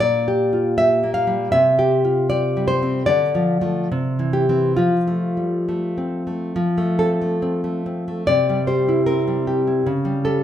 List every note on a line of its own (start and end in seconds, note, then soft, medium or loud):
0.00 1.50 A#2 medium
0.00 0.74 D5 medium
0.28 0.77 G4 soft
0.53 1.54 F4 soft
0.78 1.55 G4 soft
0.78 1.14 E5 medium
1.03 1.55 A#3 soft
1.14 1.51 F5 medium
1.27 1.54 G3 soft
1.52 3.05 C3 medium
1.52 2.28 E5 medium
1.79 2.30 G4 medium
2.05 3.09 F4 soft
2.30 3.09 G4 soft
2.30 2.67 D5 medium
2.57 3.09 G3 soft
2.68 3.06 C5 medium
2.83 3.09 C4 soft
3.06 3.88 D3 medium
3.06 4.29 D5 loud
3.35 3.60 F3 soft
3.61 3.88 F3 soft
3.61 3.88 A3 soft
3.92 4.76 C3 medium
4.19 4.48 E3 soft
4.33 4.76 G4 medium
4.49 4.76 E3 soft
4.49 4.76 C4 soft
4.77 6.54 F3 medium
4.77 6.09 F4 medium
5.07 5.67 A3 soft
5.37 5.97 G3 soft
5.69 6.26 A3 soft
5.98 6.58 C4 soft
6.27 6.57 A3 soft
6.56 8.22 F3 medium
6.78 7.20 A3 soft
6.99 7.41 C4 soft
6.99 8.22 A4 medium
7.22 7.63 A3 soft
7.42 7.85 C4 soft
7.64 8.07 A3 soft
7.86 8.27 C4 soft
8.08 8.28 A3 soft
8.27 9.82 C3 medium
8.27 8.66 D5 medium
8.49 9.26 G3 soft
8.67 9.46 G4 soft
8.67 9.05 C5 medium
8.89 9.66 E4 soft
9.06 9.86 C4 soft
9.06 9.82 A#4 medium
9.28 9.86 G3 soft
9.47 9.86 G4 soft
9.67 9.86 E4 soft
9.86 10.44 C#3 medium
10.05 10.44 G3 soft
10.25 10.44 G4 soft
10.25 10.44 A4 medium